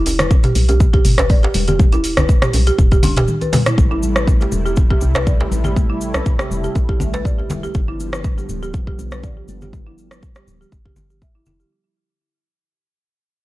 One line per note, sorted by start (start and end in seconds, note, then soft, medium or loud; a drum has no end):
0.00 0.49 E1 loud
0.06 open hi-hat medium
0.06 djembe tone medium
0.06 cabasa medium
0.19 0.30 B4 medium
0.19 cross-stick medium
0.19 closed hi-hat medium
0.19 muted conga soft
0.19 low conga medium
0.19 cabasa soft
0.31 kick loud
0.31 djembe tone medium
0.31 cabasa soft
0.43 0.54 G4 medium
0.43 closed hi-hat soft
0.43 mid tom medium
0.43 muted conga medium
0.43 djembe slap medium
0.43 cabasa soft
0.55 0.99 B1 medium
0.55 open hi-hat medium
0.55 high conga medium
0.55 cabasa medium
0.69 0.80 G4 loud
0.69 closed hi-hat medium
0.69 muted conga soft
0.69 djembe tone medium
0.69 cabasa soft
0.80 kick loud
0.80 cabasa medium
0.93 1.04 G4 loud
0.93 kick medium
0.93 closed hi-hat soft
0.93 djembe tone medium
1.05 1.49 G1 loud
1.05 mid tom medium
1.05 open hi-hat medium
1.05 muted conga soft
1.05 cabasa medium
1.18 1.29 B4 loud
1.18 cross-stick medium
1.18 closed hi-hat medium
1.18 djembe slap loud
1.18 djembe bass medium
1.18 cabasa soft
1.30 1.42 D5 medium
1.30 kick loud
1.30 open hi-hat medium
1.30 muted conga soft
1.30 djembe tone medium
1.30 cabasa medium
1.43 1.53 G4 medium
1.43 closed hi-hat soft
1.43 djembe slap loud
1.54 2.48 E1 medium
1.54 open hi-hat medium
1.54 muted conga medium
1.54 high conga medium
1.54 djembe tone medium
1.54 cabasa medium
1.68 1.79 G4 medium
1.68 closed hi-hat medium
1.68 low conga medium
1.68 cabasa soft
1.79 kick loud
1.79 muted conga medium
1.79 high conga loud
1.79 cabasa soft
1.92 2.03 E4 loud
1.92 closed hi-hat soft
1.92 djembe tone medium
1.92 cabasa soft
2.04 open hi-hat medium
2.04 cabasa medium
2.17 2.28 B4 medium
2.17 cross-stick medium
2.17 closed hi-hat medium
2.17 muted conga soft
2.17 djembe tone medium
2.17 low conga medium
2.17 djembe bass medium
2.17 cabasa soft
2.29 kick loud
2.29 cabasa medium
2.42 2.53 G4 medium
2.42 cross-stick medium
2.42 closed hi-hat soft
2.42 mid tom medium
2.42 muted conga medium
2.42 djembe slap medium
2.42 cabasa soft
2.54 2.71 B1 medium
2.54 open hi-hat medium
2.54 high conga medium
2.54 djembe tone medium
2.54 cabasa medium
2.67 2.78 G4 loud
2.67 closed hi-hat medium
2.67 muted conga soft
2.67 cabasa soft
2.78 3.28 E1 medium
2.78 kick loud
2.78 mid tom medium
2.78 djembe tone medium
2.78 cabasa soft
2.92 3.02 G4 loud
2.92 kick medium
2.92 closed hi-hat soft
2.92 cabasa soft
3.03 3.16 D4 medium
3.03 open hi-hat medium
3.03 high tom medium
3.03 muted conga soft
3.03 low conga loud
3.03 djembe bass medium
3.03 cabasa medium
3.17 3.27 G4 loud
3.17 closed hi-hat medium
3.17 mid tom medium
3.17 djembe slap loud
3.17 djembe tone medium
3.17 cabasa soft
3.28 mid tom medium
3.28 muted conga soft
3.28 cabasa soft
3.41 3.53 B4 medium
3.41 closed hi-hat soft
3.41 mid tom medium
3.41 djembe tone medium
3.41 cabasa soft
3.53 mid tom medium
3.53 open hi-hat medium
3.53 djembe slap loud
3.53 muted conga soft
3.53 high conga medium
3.53 low conga loud
3.53 cabasa medium
3.66 3.73 E4 medium
3.66 cross-stick medium
3.66 closed hi-hat medium
3.66 mid tom medium
3.66 cabasa soft
3.77 4.46 A1 loud
3.77 7.70 C3 medium
3.77 7.70 G3 medium
3.77 7.70 A3 medium
3.77 7.70 E4 medium
3.77 kick loud
3.77 muted conga medium
3.77 high conga medium
3.77 cabasa soft
3.91 4.01 E4 medium
3.91 djembe tone medium
4.03 high conga medium
4.03 cabasa loud
4.16 4.27 B4 medium
4.16 cross-stick medium
4.16 muted conga soft
4.16 cabasa soft
4.27 kick loud
4.27 djembe tone medium
4.27 cabasa soft
4.41 4.51 G4 medium
4.41 muted conga medium
4.41 djembe slap medium
4.41 cabasa soft
4.52 4.96 E1 medium
4.52 high conga medium
4.52 djembe tone medium
4.52 cabasa medium
4.66 4.77 G4 loud
4.66 muted conga soft
4.66 cabasa soft
4.76 kick loud
4.76 cabasa medium
4.90 5.01 G4 loud
4.90 kick medium
4.90 djembe tone loud
5.01 5.45 C2 loud
5.01 muted conga soft
5.01 cabasa medium
5.14 5.26 B4 loud
5.14 cross-stick medium
5.14 djembe slap loud
5.14 djembe tone medium
5.14 djembe bass medium
5.14 cabasa soft
5.27 5.39 D5 medium
5.27 kick loud
5.27 muted conga soft
5.27 cabasa soft
5.40 5.50 G4 medium
5.40 djembe slap loud
5.51 6.44 A1 medium
5.51 muted conga soft
5.51 djembe tone medium
5.51 high conga medium
5.51 cabasa medium
5.64 5.76 G4 medium
5.64 low conga medium
5.64 cabasa soft
5.76 kick loud
5.76 muted conga soft
5.76 djembe tone medium
5.76 high conga loud
5.76 cabasa medium
5.90 6.00 E4 medium
6.01 cabasa medium
6.14 6.25 B4 medium
6.14 cross-stick medium
6.14 muted conga soft
6.14 djembe tone medium
6.14 djembe bass medium
6.14 cabasa soft
6.26 kick loud
6.26 cabasa medium
6.39 6.49 G4 medium
6.39 cross-stick medium
6.39 muted conga soft
6.39 djembe tone medium
6.39 cabasa soft
6.51 6.68 E1 medium
6.51 high conga medium
6.51 cabasa medium
6.64 6.75 G4 loud
6.64 muted conga soft
6.64 cabasa soft
6.75 7.51 A1 medium
6.75 kick loud
6.75 djembe tone medium
6.75 cabasa medium
6.89 6.99 G4 loud
6.89 kick medium
7.00 muted conga medium
7.00 djembe tone medium
7.00 low conga loud
7.00 djembe bass medium
7.00 cabasa medium
7.13 7.24 B4 loud
7.13 djembe slap loud
7.13 cabasa soft
7.25 7.38 D5 medium
7.25 kick loud
7.25 muted conga soft
7.25 cabasa medium
7.38 7.49 G4 medium
7.38 djembe tone medium
7.50 7.67 E1 medium
7.50 muted conga soft
7.50 djembe slap loud
7.50 high conga medium
7.50 low conga loud
7.50 cabasa medium
7.63 7.74 G4 medium
7.63 djembe tone medium
7.63 cabasa soft
7.74 8.43 G1 medium
7.74 11.67 D3 medium
7.74 11.67 F3 medium
7.74 11.67 G3 medium
7.74 11.67 B3 medium
7.74 kick loud
7.74 muted conga soft
7.74 high conga loud
7.74 cabasa soft
7.88 7.98 E4 medium
8.00 high conga medium
8.00 cabasa medium
8.12 8.24 B4 medium
8.12 cross-stick medium
8.12 muted conga soft
8.12 cabasa soft
8.24 kick loud
8.24 cabasa medium
8.38 8.48 G4 medium
8.38 muted conga soft
8.38 cabasa soft
8.49 8.93 D1 medium
8.49 high conga medium
8.49 cabasa medium
8.63 8.73 G4 medium
8.63 muted conga soft
8.63 cabasa soft
8.74 kick loud
8.74 cabasa soft
8.87 8.98 G4 medium
8.87 kick medium
8.99 9.42 B1 medium
8.99 muted conga soft
8.99 cabasa medium
9.11 9.23 B4 loud
9.11 cross-stick medium
9.11 cabasa soft
9.23 9.36 D5 medium
9.23 kick loud
9.23 muted conga soft
9.23 cabasa soft
9.37 9.47 G4 medium
9.48 10.41 G1 medium
9.48 muted conga soft
9.48 high conga medium
9.48 cabasa medium
9.61 9.73 G4 medium
9.61 low conga medium
9.61 cabasa soft
9.73 kick loud
9.73 muted conga soft
9.73 high conga medium
9.73 cabasa soft
9.87 9.97 E4 medium
9.98 cabasa medium
10.11 10.22 B4 medium
10.11 cross-stick medium
10.11 muted conga soft
10.11 cabasa soft
10.23 kick loud
10.23 cabasa soft
10.35 10.46 G4 medium
10.35 cross-stick medium
10.35 muted conga soft
10.35 cabasa soft
10.47 10.65 D1 medium
10.47 high conga medium
10.47 cabasa medium
10.61 10.72 G4 medium
10.61 muted conga soft
10.61 cabasa soft
10.72 10.96 G1 medium
10.72 kick loud
10.72 cabasa medium
10.86 10.96 G4 medium
10.86 kick medium
10.96 11.40 G1 medium
10.96 muted conga soft
10.96 low conga loud
10.96 cabasa medium
11.10 11.21 G4 medium
11.10 cabasa soft
11.22 11.29 E5 medium
11.22 kick loud
11.22 cabasa soft
11.35 11.45 E4 medium
11.46 11.64 F1 medium
11.46 11.54 E4 medium
11.46 muted conga soft
11.46 high conga medium
11.46 low conga loud
11.46 cabasa medium
11.60 11.71 G4 medium
11.60 cabasa soft